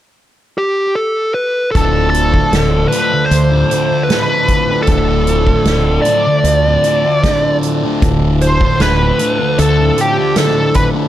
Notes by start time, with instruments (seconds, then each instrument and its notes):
0.58 lead electric guitar G4
0.95 lead electric guitar A4
1.34 lead electric guitar B4
1.71 fingered electric bass D1, distorted electric guitar D2, harmonium F3 D4, lead electric guitar A4, kick
1.75 distorted electric guitar A2 D3, harmonium A3, closed hi-hat
2.10 lead electric guitar A4
2.14 closed hi-hat
2.34 distorted electric guitar A2 D3, kick
2.52 fingered electric bass D1, distorted electric guitar D2 A2 D3, snare, closed hi-hat
2.88 distorted electric guitar D2, lead electric guitar B4
2.92 distorted electric guitar A2 D3, closed hi-hat
3.12 muted distorted electric guitar stroke
3.26 lead electric guitar C5
3.31 fingered electric bass D2, closed hi-hat
3.51 distorted electric guitar A2 D3
3.70 distorted electric guitar D2 A2 D3, closed hi-hat
3.91 muted distorted electric guitar stroke
4.03 lead electric guitar B4
4.10 distorted electric guitar D2 A2 D3, snare, closed hi-hat
4.48 kick, closed hi-hat
4.69 distorted electric guitar A2 D3
4.83 lead electric guitar A4
4.87 fingered electric bass D1, distorted electric guitar D2 A2 D3, kick, closed hi-hat
5.27 closed hi-hat
5.47 distorted electric guitar A2 D3, kick
5.65 fingered electric bass D1, distorted electric guitar D2 A2 D3, snare, closed hi-hat
6.02 lead electric guitar D5, closed hi-hat
6.06 distorted electric guitar D2 A2 D3
6.27 muted distorted electric guitar stroke
6.44 fingered electric bass D2, closed hi-hat
6.65 distorted electric guitar A2 D3
6.84 distorted electric guitar D2 A2 D3, closed hi-hat
7.05 muted distorted electric guitar stroke
7.23 distorted electric guitar D2 A2 D3, kick, snare, closed hi-hat
7.63 closed hi-hat
7.83 distorted electric guitar A2 D3
8.02 fingered electric bass D1, distorted electric guitar D2 A2 D3, kick, closed hi-hat
8.41 lead electric guitar C5, closed hi-hat
8.61 distorted electric guitar A2 D3, kick
8.79 fingered electric bass D1, distorted electric guitar D2 A2 D3, lead electric guitar B4, snare, closed hi-hat
9.19 distorted electric guitar D2 A2 D3, closed hi-hat
9.40 muted distorted electric guitar stroke
9.59 fingered electric bass D2, lead electric guitar A4, closed hi-hat
9.79 distorted electric guitar A2 D3
9.97 distorted electric guitar D2 A2 D3, lead electric guitar G4, closed hi-hat
10.18 muted distorted electric guitar stroke
10.36 distorted electric guitar D2 A2 D3, lead electric guitar A4, snare, closed hi-hat
10.74 lead electric guitar B4, kick, closed hi-hat
10.95 distorted electric guitar A2 D3